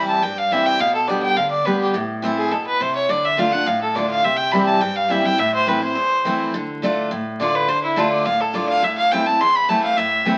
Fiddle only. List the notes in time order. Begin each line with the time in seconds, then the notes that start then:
0.08 A5
0.23 G5
0.38 F5
0.52 E5
0.66 G5
0.80 F5
0.94 A4
1.08 D5
1.22 G5
1.36 F5
1.51 D5
1.65 B4
1.81 G4
2.37 G#4
2.51 A4
2.67 B4
2.81 C5
2.95 C#5
3.10 D5
3.25 E5
3.39 F5
3.52 F#5
3.67 F5
3.81 A4
3.96 D5
4.10 F5
4.24 E5
4.37 G5
4.51 B5
4.66 A5
4.81 G5
4.96 F5
5.11 E5
5.25 G5
5.39 E5
5.55 C5
5.68 B4
5.83 C5
7.40 D5
7.55 B4
7.69 C5
7.83 E4
7.97 A4
8.11 D5
8.25 F5
8.41 A4
8.55 D5
8.69 F5
8.84 E5
8.98 F5
9.12 G5
9.26 A5
9.41 C6
9.55 B5
9.69 A5
9.83 F5
9.97 E5